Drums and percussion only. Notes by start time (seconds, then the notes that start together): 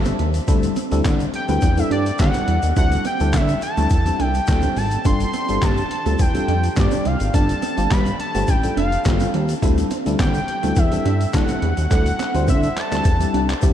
0.05 closed hi-hat, shaker
0.19 closed hi-hat
0.34 closed hi-hat, shaker
0.48 kick, closed hi-hat, shaker
0.63 closed hi-hat, shaker
0.76 closed hi-hat, shaker
0.92 closed hi-hat, shaker
1.05 kick, snare, clap, closed hi-hat, shaker
1.20 closed hi-hat, shaker
1.34 closed hi-hat
1.49 closed hi-hat, shaker
1.61 kick, closed hi-hat, shaker
1.77 closed hi-hat, shaker
1.91 closed hi-hat
2.06 closed hi-hat, shaker
2.19 kick, snare, clap, closed hi-hat, shaker
2.34 closed hi-hat, shaker
2.48 closed hi-hat
2.63 closed hi-hat, shaker
2.76 kick, closed hi-hat, shaker
2.92 closed hi-hat, shaker
3.05 closed hi-hat, shaker
3.20 closed hi-hat, shaker
3.33 kick, snare, clap, closed hi-hat, shaker
3.48 closed hi-hat, shaker
3.62 closed hi-hat, shaker
3.77 closed hi-hat, shaker
3.90 kick, closed hi-hat, shaker
4.06 closed hi-hat, shaker
4.20 closed hi-hat
4.35 closed hi-hat, shaker
4.47 kick, snare, clap, closed hi-hat, shaker
4.62 closed hi-hat, shaker
4.77 open hi-hat, shaker
4.91 closed hi-hat, shaker
5.05 kick, closed hi-hat, shaker
5.20 closed hi-hat, shaker
5.34 closed hi-hat, shaker
5.49 closed hi-hat, shaker
5.62 kick, snare, clap, closed hi-hat, shaker
5.77 closed hi-hat, shaker
5.91 closed hi-hat
6.06 closed hi-hat, shaker
6.19 kick, closed hi-hat, shaker
6.35 closed hi-hat, shaker
6.48 closed hi-hat
6.64 closed hi-hat, shaker
6.76 kick, snare, clap, closed hi-hat, shaker
6.91 closed hi-hat, shaker
7.05 closed hi-hat
7.20 closed hi-hat, shaker
7.34 kick, closed hi-hat, shaker
7.49 closed hi-hat, shaker
7.62 closed hi-hat, shaker
7.78 closed hi-hat, shaker
7.91 kick, snare, clap, closed hi-hat, shaker
8.06 closed hi-hat, shaker
8.20 closed hi-hat
8.35 closed hi-hat, shaker
8.47 kick, closed hi-hat, shaker
8.63 closed hi-hat, shaker
8.77 closed hi-hat
8.92 closed hi-hat, shaker
9.05 kick, snare, clap, closed hi-hat, shaker
9.20 closed hi-hat, shaker
9.34 closed hi-hat
9.49 closed hi-hat, shaker
9.63 kick, closed hi-hat, shaker
9.78 closed hi-hat, shaker
9.91 closed hi-hat, shaker
10.06 closed hi-hat, shaker
10.20 kick, snare, clap, closed hi-hat, shaker
10.34 closed hi-hat, shaker
10.48 closed hi-hat
10.63 closed hi-hat, shaker
10.76 kick, closed hi-hat, shaker
10.92 closed hi-hat, shaker
11.06 closed hi-hat
11.21 closed hi-hat, shaker
11.33 kick, snare, clap, closed hi-hat, shaker
11.48 closed hi-hat, shaker
11.62 closed hi-hat
11.77 closed hi-hat, shaker
11.91 kick, clap, closed hi-hat, shaker
12.06 closed hi-hat, shaker
12.19 clap, closed hi-hat, shaker
12.34 closed hi-hat, shaker
12.48 kick, closed hi-hat, shaker
12.63 closed hi-hat, shaker
12.77 clap, closed hi-hat
12.92 clap, closed hi-hat, shaker
13.04 kick, closed hi-hat, shaker
13.20 closed hi-hat, shaker
13.34 closed hi-hat
13.49 clap, closed hi-hat, shaker
13.62 kick, closed hi-hat, shaker